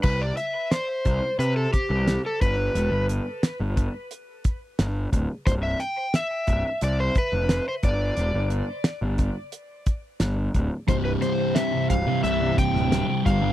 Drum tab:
CC |x---------------|----------------|----------------|----------------|
HH |--x-x-x-x-x-x-x-|x-x-x-x-x-x-x-x-|x-x-x-x-x-x-x-x-|x-x-x-x-x-x-x-x-|
SD |----o-------o---|----o-------o---|----o-------o---|----o-------o---|
BD |o-----o---o---o-|------o---o---o-|o-----o---o---o-|------o---o---o-|

CC |----------------|
HH |x-x-x-x-x-x-x-x-|
SD |--o-o------oo---|
BD |o-----o---o---o-|